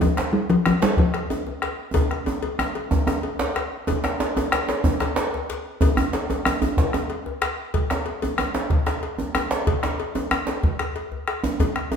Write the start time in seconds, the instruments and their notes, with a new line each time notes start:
0.01 talking drum F3, bombo low, cowbell, djembe tone, djembe bass
0.17 bombo rim, djembe slap
0.33 talking drum G3, djembe slap
0.50 talking drum F3, cowbell, djembe slap, djembe tone
0.66 talking drum F3, bombo rim, djembe slap, djembe tone
0.82 talking drum G3, cowbell, djembe slap
0.97 talking drum F3, bombo low, djembe tone, djembe bass
1.14 bombo rim, cowbell, djembe slap
1.30 cowbell, djembe tone
1.47 djembe tone
1.62 bombo rim, cowbell, djembe slap
1.94 bombo rim, bombo low, cowbell, djembe tone, djembe bass
2.11 bombo rim, djembe slap
2.26 bombo rim, cowbell, djembe slap, djembe tone
2.43 cowbell, djembe slap, djembe tone
2.59 bombo rim, djembe slap, djembe tone
2.75 bombo rim, cowbell, djembe slap
2.91 bombo rim, bombo low, djembe tone, djembe bass
3.07 bombo rim, cowbell, djembe slap, djembe tone
3.23 bombo rim, cowbell
3.39 djembe slap, djembe tone
3.56 bombo rim, cowbell, djembe slap
3.73 djembe slap
3.87 bombo low, cowbell, djembe tone, djembe bass
4.04 bombo rim, djembe slap
4.20 cowbell, djembe slap
4.37 cowbell, djembe slap, djembe tone
4.52 bombo rim, djembe slap
4.68 cowbell, djembe slap
4.84 bombo low, djembe tone, djembe bass
5.00 bombo rim, cowbell, djembe slap
5.02 djembe slap
5.16 cowbell, djembe slap
5.34 djembe tone
5.50 cowbell, djembe slap
5.81 bombo low, cowbell, djembe tone, djembe bass
5.97 bombo rim, djembe slap, djembe bass
6.13 cowbell, djembe slap
6.30 cowbell, djembe slap, djembe tone
6.45 bombo rim, djembe slap, djembe tone
6.62 cowbell, djembe bass
6.77 bombo low, djembe slap, djembe tone, djembe bass
6.93 bombo rim, cowbell, djembe slap, djembe tone
7.10 cowbell
7.26 djembe tone
7.42 bombo rim, cowbell, djembe slap
7.74 bombo low, cowbell, djembe tone, djembe bass
7.90 bombo rim, djembe slap
8.06 cowbell, djembe slap
8.22 cowbell, djembe slap, djembe tone
8.38 bombo rim, djembe slap, djembe tone
8.55 cowbell, djembe slap
8.70 bombo low, djembe tone, djembe bass
8.86 bombo rim, cowbell, djembe slap
9.03 cowbell
9.18 djembe tone
9.35 bombo rim, cowbell, djembe slap, djembe tone
9.51 djembe slap
9.67 bombo low, cowbell, djembe tone, djembe bass
9.83 bombo rim, djembe slap
9.99 bombo rim, cowbell
10.15 cowbell, djembe tone
10.31 bombo rim, djembe slap, djembe tone
10.47 cowbell, djembe slap
10.63 bombo low, djembe slap, djembe tone, djembe bass
10.79 bombo rim, cowbell, djembe slap
10.96 cowbell
11.12 djembe bass
11.28 bombo rim, cowbell, djembe slap
11.44 bombo rim, djembe slap, djembe tone
11.60 bombo low, cowbell, djembe tone, djembe bass
11.76 bombo rim, djembe slap
11.92 cowbell, djembe tone